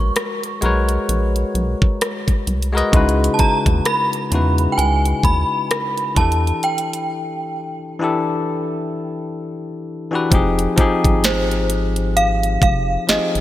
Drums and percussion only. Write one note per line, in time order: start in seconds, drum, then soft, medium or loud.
0.16 cross-stick loud
0.16 closed hi-hat medium
0.43 closed hi-hat soft
0.62 closed hi-hat medium
0.89 closed hi-hat medium
1.09 closed hi-hat medium
1.36 closed hi-hat soft
1.55 closed hi-hat soft
1.82 kick loud
2.01 cross-stick loud
2.01 closed hi-hat medium
2.28 kick medium
2.28 closed hi-hat soft
2.47 closed hi-hat medium
2.62 closed hi-hat medium
2.78 closed hi-hat medium
2.93 kick loud
2.93 closed hi-hat medium
3.09 closed hi-hat medium
3.24 closed hi-hat medium
3.39 kick medium
3.39 closed hi-hat medium
3.66 kick medium
3.66 closed hi-hat soft
3.85 cross-stick loud
3.85 closed hi-hat medium
4.13 closed hi-hat soft
4.32 closed hi-hat medium
4.58 closed hi-hat medium
4.79 closed hi-hat medium
5.05 closed hi-hat soft
5.23 kick medium
5.23 closed hi-hat soft
5.71 cross-stick loud
5.71 closed hi-hat medium
5.98 closed hi-hat soft
6.16 kick loud
6.16 closed hi-hat medium
6.32 closed hi-hat medium
6.47 closed hi-hat medium
6.63 closed hi-hat medium
6.78 closed hi-hat medium
6.93 closed hi-hat medium
10.32 kick loud
10.32 closed hi-hat medium
10.59 closed hi-hat medium
10.78 kick medium
10.78 closed hi-hat medium
11.04 kick medium
11.04 closed hi-hat medium
11.24 snare loud
11.24 closed hi-hat medium
11.51 closed hi-hat soft
11.70 closed hi-hat medium
11.96 closed hi-hat medium
12.17 closed hi-hat medium
12.43 closed hi-hat medium
12.62 kick loud
12.62 closed hi-hat medium
13.09 snare loud
13.09 closed hi-hat medium
13.35 closed hi-hat soft